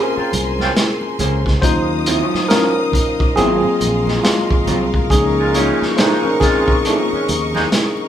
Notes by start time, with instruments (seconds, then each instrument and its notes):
Already playing: tine electric piano G#3 A#3 C4 C#4 F4 G#4 A#4 C5, hollow-body jazz guitar C#4 G#4 C5, string section A#4 C5 G#5 C6
0.16 horn section C#3 C4 F4, muted fretless electric bass stroke
0.33 fretless electric bass C2, closed hi-hat, high conga
0.59 horn section C#3 C4 F4, snare, high conga
0.77 snare, closed hi-hat
1.01 muted conga
1.19 fretless electric bass C#2, hollow-body jazz guitar C#4 G#4 C5, closed hi-hat, high conga, low conga
1.46 kick, snare
1.62 fretless electric bass D#2, tine electric piano F#3 C#4 D#4 F4 C5, string section D#5 F5 D#6, kick, closed hi-hat, muted conga, low conga
2.06 hollow-body jazz guitar F3 C4 E4, closed hi-hat, high conga
2.23 hollow-body jazz guitar F#3 C#4 F4
2.34 muted fretless electric bass stroke, snare
2.48 hollow-body jazz guitar F#3 C#4 F4, tine electric piano C#4 A#4, snare, closed hi-hat, muted conga
2.92 kick, closed hi-hat, low conga
3.20 kick
3.36 fretless electric bass G#1, tine electric piano F#3 A#3 C4 F4 G#4, hollow-body jazz guitar F#3 C4 F4, string section A#4 C6, closed hi-hat
3.64 muted fretless electric bass stroke, muted conga
3.81 fretless electric bass A#1, closed hi-hat, high conga
4.07 snare, high conga
4.23 tine electric piano G#3 F4, snare, closed hi-hat, muted conga
4.49 fretless electric bass G#1, kick, muted conga
4.67 fretless electric bass C2, hollow-body jazz guitar F#3 C4 F4, closed hi-hat, high conga, low conga
4.94 kick
5.10 fretless electric bass C#2, tine electric piano F3 A#3 C#4 D#4 G#4, string section D#5 C#6, kick, closed hi-hat, muted conga, low conga
5.37 horn section A#2 G#3 F4
5.53 horn section A#2 G#3 C#4, hollow-body jazz guitar A#3 D#4 F4, closed hi-hat, high conga
5.82 muted fretless electric bass stroke, snare
5.97 horn section A#2 G#3 D#4, hollow-body jazz guitar A#3 D#4 F4, tine electric piano D#4 C5, snare, closed hi-hat
6.24 tine electric piano C#4 A#4, muted conga
6.40 horn section A#2 G#3 F4, tine electric piano C4 G#4, kick, snare, closed hi-hat, low conga
6.68 kick
6.85 hollow-body jazz guitar A#3 D#4 F4, closed hi-hat
7.11 horn section A#2 G#3 C#4, muted fretless electric bass stroke
7.28 fretless electric bass D#2, closed hi-hat, high conga
7.54 horn section A#2 G#3 D#4, snare, high conga
7.72 snare, closed hi-hat
7.97 muted conga